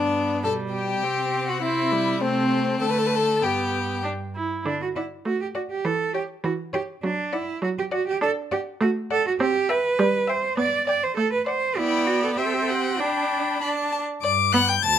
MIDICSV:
0, 0, Header, 1, 5, 480
1, 0, Start_track
1, 0, Key_signature, 1, "major"
1, 0, Tempo, 593472
1, 835, Time_signature, 2, 2, 24, 8
1, 2274, Tempo, 610998
1, 3725, Key_signature, 2, "major"
1, 4194, Tempo, 592300
1, 7555, Key_signature, 1, "major"
1, 9474, Tempo, 611621
1, 11998, End_track
2, 0, Start_track
2, 0, Title_t, "Violin"
2, 0, Program_c, 0, 40
2, 0, Note_on_c, 0, 74, 47
2, 329, Note_off_c, 0, 74, 0
2, 356, Note_on_c, 0, 81, 55
2, 421, Note_off_c, 0, 81, 0
2, 599, Note_on_c, 0, 79, 45
2, 1183, Note_off_c, 0, 79, 0
2, 1191, Note_on_c, 0, 78, 55
2, 1309, Note_on_c, 0, 76, 59
2, 1321, Note_off_c, 0, 78, 0
2, 1790, Note_on_c, 0, 72, 60
2, 1802, Note_off_c, 0, 76, 0
2, 2263, Note_off_c, 0, 72, 0
2, 2268, Note_on_c, 0, 81, 65
2, 2755, Note_on_c, 0, 79, 53
2, 2767, Note_off_c, 0, 81, 0
2, 3240, Note_off_c, 0, 79, 0
2, 3964, Note_on_c, 0, 78, 50
2, 4136, Note_off_c, 0, 78, 0
2, 4437, Note_on_c, 0, 78, 49
2, 4615, Note_off_c, 0, 78, 0
2, 4917, Note_on_c, 0, 79, 55
2, 5096, Note_off_c, 0, 79, 0
2, 5399, Note_on_c, 0, 79, 52
2, 5576, Note_off_c, 0, 79, 0
2, 5878, Note_on_c, 0, 78, 60
2, 6055, Note_off_c, 0, 78, 0
2, 6354, Note_on_c, 0, 78, 62
2, 6534, Note_off_c, 0, 78, 0
2, 6838, Note_on_c, 0, 78, 68
2, 7016, Note_off_c, 0, 78, 0
2, 7316, Note_on_c, 0, 78, 65
2, 7494, Note_off_c, 0, 78, 0
2, 7799, Note_on_c, 0, 79, 69
2, 7973, Note_off_c, 0, 79, 0
2, 8278, Note_on_c, 0, 79, 63
2, 8453, Note_off_c, 0, 79, 0
2, 8760, Note_on_c, 0, 79, 64
2, 8933, Note_off_c, 0, 79, 0
2, 9238, Note_on_c, 0, 78, 62
2, 9415, Note_off_c, 0, 78, 0
2, 9483, Note_on_c, 0, 79, 57
2, 9921, Note_off_c, 0, 79, 0
2, 9954, Note_on_c, 0, 79, 53
2, 10439, Note_on_c, 0, 83, 49
2, 10451, Note_off_c, 0, 79, 0
2, 10920, Note_on_c, 0, 81, 49
2, 10932, Note_off_c, 0, 83, 0
2, 11244, Note_off_c, 0, 81, 0
2, 11402, Note_on_c, 0, 86, 78
2, 11637, Note_on_c, 0, 90, 87
2, 11649, Note_off_c, 0, 86, 0
2, 11763, Note_on_c, 0, 91, 86
2, 11774, Note_off_c, 0, 90, 0
2, 11871, Note_on_c, 0, 93, 100
2, 11883, Note_off_c, 0, 91, 0
2, 11998, Note_off_c, 0, 93, 0
2, 11998, End_track
3, 0, Start_track
3, 0, Title_t, "Violin"
3, 0, Program_c, 1, 40
3, 0, Note_on_c, 1, 62, 55
3, 324, Note_off_c, 1, 62, 0
3, 357, Note_on_c, 1, 69, 61
3, 421, Note_off_c, 1, 69, 0
3, 596, Note_on_c, 1, 67, 52
3, 1204, Note_on_c, 1, 66, 59
3, 1216, Note_off_c, 1, 67, 0
3, 1307, Note_off_c, 1, 66, 0
3, 1312, Note_on_c, 1, 64, 66
3, 1779, Note_off_c, 1, 64, 0
3, 1796, Note_on_c, 1, 60, 72
3, 2278, Note_on_c, 1, 69, 59
3, 2290, Note_off_c, 1, 60, 0
3, 2346, Note_on_c, 1, 71, 59
3, 2358, Note_off_c, 1, 69, 0
3, 2411, Note_on_c, 1, 69, 60
3, 2422, Note_off_c, 1, 71, 0
3, 2475, Note_on_c, 1, 71, 55
3, 2487, Note_off_c, 1, 69, 0
3, 2542, Note_on_c, 1, 69, 68
3, 2553, Note_off_c, 1, 71, 0
3, 2765, Note_on_c, 1, 67, 59
3, 2777, Note_off_c, 1, 69, 0
3, 3245, Note_off_c, 1, 67, 0
3, 3968, Note_on_c, 1, 74, 52
3, 4138, Note_off_c, 1, 74, 0
3, 4434, Note_on_c, 1, 74, 53
3, 4613, Note_off_c, 1, 74, 0
3, 4916, Note_on_c, 1, 73, 56
3, 5096, Note_off_c, 1, 73, 0
3, 5391, Note_on_c, 1, 73, 56
3, 5572, Note_off_c, 1, 73, 0
3, 5876, Note_on_c, 1, 74, 60
3, 6054, Note_off_c, 1, 74, 0
3, 6351, Note_on_c, 1, 74, 64
3, 6532, Note_off_c, 1, 74, 0
3, 6836, Note_on_c, 1, 74, 63
3, 7015, Note_off_c, 1, 74, 0
3, 7314, Note_on_c, 1, 74, 65
3, 7493, Note_off_c, 1, 74, 0
3, 7787, Note_on_c, 1, 76, 69
3, 7967, Note_off_c, 1, 76, 0
3, 8265, Note_on_c, 1, 76, 64
3, 8446, Note_off_c, 1, 76, 0
3, 8747, Note_on_c, 1, 74, 68
3, 8925, Note_off_c, 1, 74, 0
3, 9226, Note_on_c, 1, 74, 64
3, 9408, Note_off_c, 1, 74, 0
3, 9474, Note_on_c, 1, 74, 60
3, 9953, Note_on_c, 1, 76, 51
3, 9965, Note_off_c, 1, 74, 0
3, 10192, Note_on_c, 1, 78, 48
3, 10204, Note_off_c, 1, 76, 0
3, 10434, Note_on_c, 1, 79, 52
3, 10445, Note_off_c, 1, 78, 0
3, 10914, Note_off_c, 1, 79, 0
3, 10919, Note_on_c, 1, 83, 53
3, 10981, Note_off_c, 1, 83, 0
3, 11162, Note_on_c, 1, 81, 45
3, 11225, Note_off_c, 1, 81, 0
3, 11408, Note_on_c, 1, 74, 63
3, 11471, Note_off_c, 1, 74, 0
3, 11645, Note_on_c, 1, 78, 73
3, 11758, Note_off_c, 1, 78, 0
3, 11765, Note_on_c, 1, 79, 72
3, 11811, Note_off_c, 1, 79, 0
3, 11880, Note_on_c, 1, 81, 82
3, 11998, Note_off_c, 1, 81, 0
3, 11998, End_track
4, 0, Start_track
4, 0, Title_t, "Cello"
4, 0, Program_c, 2, 42
4, 0, Note_on_c, 2, 43, 43
4, 357, Note_on_c, 2, 47, 41
4, 369, Note_off_c, 2, 43, 0
4, 831, Note_off_c, 2, 47, 0
4, 836, Note_on_c, 2, 48, 49
4, 1770, Note_off_c, 2, 48, 0
4, 1793, Note_on_c, 2, 48, 56
4, 2266, Note_off_c, 2, 48, 0
4, 2277, Note_on_c, 2, 50, 53
4, 2756, Note_on_c, 2, 43, 46
4, 2768, Note_off_c, 2, 50, 0
4, 3566, Note_off_c, 2, 43, 0
4, 3724, Note_on_c, 2, 62, 67
4, 3834, Note_off_c, 2, 62, 0
4, 3854, Note_on_c, 2, 66, 57
4, 3899, Note_off_c, 2, 66, 0
4, 3961, Note_on_c, 2, 64, 57
4, 4024, Note_off_c, 2, 64, 0
4, 4195, Note_on_c, 2, 66, 65
4, 4312, Note_off_c, 2, 66, 0
4, 4326, Note_on_c, 2, 67, 60
4, 4372, Note_off_c, 2, 67, 0
4, 4435, Note_on_c, 2, 66, 60
4, 4483, Note_off_c, 2, 66, 0
4, 4560, Note_on_c, 2, 67, 63
4, 4676, Note_on_c, 2, 69, 68
4, 4688, Note_off_c, 2, 67, 0
4, 4909, Note_off_c, 2, 69, 0
4, 4914, Note_on_c, 2, 67, 64
4, 4978, Note_off_c, 2, 67, 0
4, 5157, Note_on_c, 2, 66, 66
4, 5222, Note_off_c, 2, 66, 0
4, 5396, Note_on_c, 2, 67, 71
4, 5461, Note_off_c, 2, 67, 0
4, 5635, Note_on_c, 2, 62, 71
4, 5876, Note_on_c, 2, 64, 69
4, 5888, Note_off_c, 2, 62, 0
4, 6112, Note_off_c, 2, 64, 0
4, 6117, Note_on_c, 2, 66, 77
4, 6164, Note_off_c, 2, 66, 0
4, 6245, Note_on_c, 2, 67, 71
4, 6291, Note_off_c, 2, 67, 0
4, 6358, Note_on_c, 2, 66, 75
4, 6475, Note_off_c, 2, 66, 0
4, 6482, Note_on_c, 2, 67, 75
4, 6593, Note_off_c, 2, 67, 0
4, 6598, Note_on_c, 2, 69, 87
4, 6663, Note_off_c, 2, 69, 0
4, 6840, Note_on_c, 2, 67, 77
4, 6905, Note_off_c, 2, 67, 0
4, 7078, Note_on_c, 2, 66, 81
4, 7143, Note_off_c, 2, 66, 0
4, 7320, Note_on_c, 2, 69, 90
4, 7435, Note_off_c, 2, 69, 0
4, 7447, Note_on_c, 2, 66, 79
4, 7493, Note_off_c, 2, 66, 0
4, 7556, Note_on_c, 2, 67, 94
4, 7796, Note_on_c, 2, 71, 87
4, 7809, Note_off_c, 2, 67, 0
4, 8277, Note_on_c, 2, 72, 76
4, 8289, Note_off_c, 2, 71, 0
4, 8507, Note_off_c, 2, 72, 0
4, 8512, Note_on_c, 2, 74, 96
4, 8743, Note_off_c, 2, 74, 0
4, 8748, Note_on_c, 2, 74, 81
4, 8879, Note_on_c, 2, 72, 80
4, 8891, Note_off_c, 2, 74, 0
4, 8983, Note_off_c, 2, 72, 0
4, 8987, Note_on_c, 2, 69, 86
4, 9106, Note_off_c, 2, 69, 0
4, 9117, Note_on_c, 2, 71, 76
4, 9228, Note_off_c, 2, 71, 0
4, 9233, Note_on_c, 2, 72, 80
4, 9476, Note_on_c, 2, 64, 89
4, 9488, Note_off_c, 2, 72, 0
4, 9710, Note_on_c, 2, 66, 72
4, 9721, Note_off_c, 2, 64, 0
4, 9828, Note_off_c, 2, 66, 0
4, 9841, Note_on_c, 2, 69, 67
4, 9886, Note_off_c, 2, 69, 0
4, 9949, Note_on_c, 2, 67, 63
4, 10015, Note_on_c, 2, 69, 62
4, 10027, Note_off_c, 2, 67, 0
4, 10076, Note_on_c, 2, 67, 56
4, 10087, Note_off_c, 2, 69, 0
4, 10141, Note_on_c, 2, 69, 55
4, 10153, Note_off_c, 2, 67, 0
4, 10208, Note_on_c, 2, 67, 70
4, 10220, Note_off_c, 2, 69, 0
4, 10432, Note_on_c, 2, 62, 64
4, 10444, Note_off_c, 2, 67, 0
4, 11163, Note_off_c, 2, 62, 0
4, 11403, Note_on_c, 2, 43, 67
4, 11796, Note_off_c, 2, 43, 0
4, 11879, Note_on_c, 2, 38, 72
4, 11998, Note_off_c, 2, 38, 0
4, 11998, End_track
5, 0, Start_track
5, 0, Title_t, "Viola"
5, 0, Program_c, 3, 41
5, 0, Note_on_c, 3, 59, 41
5, 354, Note_on_c, 3, 55, 46
5, 367, Note_off_c, 3, 59, 0
5, 837, Note_on_c, 3, 60, 46
5, 849, Note_off_c, 3, 55, 0
5, 1310, Note_off_c, 3, 60, 0
5, 1314, Note_on_c, 3, 60, 50
5, 1555, Note_on_c, 3, 55, 55
5, 1567, Note_off_c, 3, 60, 0
5, 1788, Note_on_c, 3, 57, 49
5, 1800, Note_off_c, 3, 55, 0
5, 2268, Note_off_c, 3, 57, 0
5, 2272, Note_on_c, 3, 57, 51
5, 2743, Note_off_c, 3, 57, 0
5, 2752, Note_on_c, 3, 59, 43
5, 3180, Note_off_c, 3, 59, 0
5, 3237, Note_on_c, 3, 62, 44
5, 3300, Note_off_c, 3, 62, 0
5, 3485, Note_on_c, 3, 64, 46
5, 3720, Note_off_c, 3, 64, 0
5, 3724, Note_on_c, 3, 50, 59
5, 4095, Note_off_c, 3, 50, 0
5, 4193, Note_on_c, 3, 57, 58
5, 4573, Note_off_c, 3, 57, 0
5, 4675, Note_on_c, 3, 52, 67
5, 5057, Note_off_c, 3, 52, 0
5, 5153, Note_on_c, 3, 52, 68
5, 5534, Note_off_c, 3, 52, 0
5, 5635, Note_on_c, 3, 54, 69
5, 6014, Note_off_c, 3, 54, 0
5, 6110, Note_on_c, 3, 54, 75
5, 6493, Note_off_c, 3, 54, 0
5, 6591, Note_on_c, 3, 62, 81
5, 6973, Note_off_c, 3, 62, 0
5, 7072, Note_on_c, 3, 57, 82
5, 7453, Note_off_c, 3, 57, 0
5, 7554, Note_on_c, 3, 60, 86
5, 7930, Note_off_c, 3, 60, 0
5, 8031, Note_on_c, 3, 55, 86
5, 8410, Note_off_c, 3, 55, 0
5, 8503, Note_on_c, 3, 59, 75
5, 8884, Note_off_c, 3, 59, 0
5, 8989, Note_on_c, 3, 57, 76
5, 9371, Note_off_c, 3, 57, 0
5, 9470, Note_on_c, 3, 59, 63
5, 9946, Note_on_c, 3, 60, 62
5, 9958, Note_off_c, 3, 59, 0
5, 10435, Note_on_c, 3, 62, 52
5, 10447, Note_off_c, 3, 60, 0
5, 10918, Note_off_c, 3, 62, 0
5, 10922, Note_on_c, 3, 62, 54
5, 11238, Note_off_c, 3, 62, 0
5, 11639, Note_on_c, 3, 59, 64
5, 11749, Note_off_c, 3, 59, 0
5, 11998, End_track
0, 0, End_of_file